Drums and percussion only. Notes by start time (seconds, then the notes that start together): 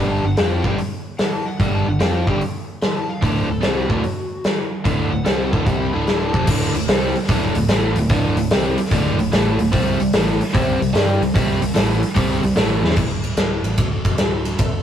0.37 snare, open hi-hat
0.64 kick
0.78 open hi-hat
1.19 snare, open hi-hat
1.60 kick, open hi-hat
2.00 snare, open hi-hat
2.27 kick
2.41 open hi-hat
2.82 snare, open hi-hat
3.22 kick, open hi-hat
3.63 snare, open hi-hat
3.90 kick
4.04 open hi-hat
4.44 snare, open hi-hat
4.85 kick, open hi-hat
5.26 snare, open hi-hat
5.53 kick
5.66 kick, open hi-hat
6.07 snare, open hi-hat
6.34 kick
6.47 kick, crash
6.75 open hi-hat
6.89 snare, open hi-hat
7.16 open hi-hat
7.23 snare
7.29 kick, open hi-hat
7.43 snare
7.55 open hi-hat
7.69 snare, open hi-hat
7.96 open hi-hat
8.09 kick, open hi-hat
8.37 open hi-hat
8.51 snare, open hi-hat
8.78 open hi-hat
8.85 snare
8.91 kick, open hi-hat
9.06 snare
9.19 open hi-hat
9.33 snare, open hi-hat
9.59 open hi-hat
9.73 kick, open hi-hat
10.00 open hi-hat
10.13 snare, open hi-hat
10.41 open hi-hat
10.48 snare
10.55 kick, open hi-hat
10.82 open hi-hat
10.95 snare, open hi-hat
11.23 open hi-hat
11.36 kick, open hi-hat
11.62 open hi-hat
11.76 snare, open hi-hat
12.03 open hi-hat
12.16 kick, open hi-hat
12.30 snare
12.43 open hi-hat
12.57 snare, open hi-hat
12.84 snare
12.90 snare
12.96 kick, crash
13.24 ride
13.37 snare, ride
13.64 ride
13.78 kick, ride
14.05 kick, ride
14.18 snare, ride
14.45 ride
14.59 kick, ride